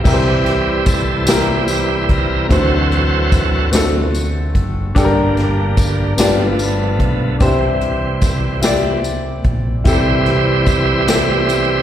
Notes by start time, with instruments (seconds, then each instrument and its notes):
0.04 fingered electric bass C2, grand piano C3 E4 G4 A#4, tonewheel organ E3 G3 C4 E4 G4, kick, crash, tambourine
0.14 grand piano C5
0.46 snare, closed hi-hat
0.86 tonewheel organ A4, kick, closed hi-hat, tambourine
1.26 tonewheel organ C4 E4 G4, grand piano E4 G4 A#4, snare, closed hi-hat, tambourine
1.68 closed hi-hat, tambourine
2.09 fingered electric bass C2, tonewheel organ E3 G3 C4 A#4, kick, closed hi-hat
2.49 fingered electric bass D2, grand piano D3 A3 C4 D4 F#4 C5, tonewheel organ E3 F#3 C4 F#4 A4 C5, kick, closed hi-hat, tambourine
2.92 closed hi-hat
3.32 kick, snare, closed hi-hat, tambourine
3.72 grand piano A3 C4 D4 F#4 A4, snare, closed hi-hat, tambourine
4.15 closed hi-hat, tambourine
4.55 fingered electric bass F#1, kick, closed hi-hat
4.95 fingered electric bass G1, grand piano G2 D4 G4 A4, tonewheel organ D3 G3 A#3, kick, closed hi-hat, tambourine
5.04 grand piano A#4
5.37 snare, closed hi-hat
5.77 kick, closed hi-hat, tambourine
6.17 fingered electric bass G1, grand piano G2 B3 D4 F4 G4 D5, tonewheel organ F3 A3 B3, snare, closed hi-hat, tambourine
6.59 closed hi-hat, tambourine
7.00 fingered electric bass B1, kick, closed hi-hat
7.39 fingered electric bass C2, grand piano C3 D4 G4 C5, tonewheel organ E3 G3 C4, kick, closed hi-hat, tambourine
7.45 grand piano E4
7.81 closed hi-hat
8.21 kick, snare, closed hi-hat, tambourine
8.62 tonewheel organ E3 G3 C4, grand piano E4 G4 D5, snare, closed hi-hat, tambourine
9.04 closed hi-hat, tambourine
9.44 fingered electric bass A#1, kick, closed hi-hat
9.84 fingered electric bass C2, grand piano C3 E4 G4 A4, tonewheel organ E3 G3 C4 E4 G4 C5, kick, closed hi-hat, tambourine
10.26 snare, closed hi-hat
10.66 tonewheel organ G4 C5 E5, kick, closed hi-hat, tambourine
11.07 grand piano E4 G4 A4, snare, closed hi-hat, tambourine
11.49 closed hi-hat, tambourine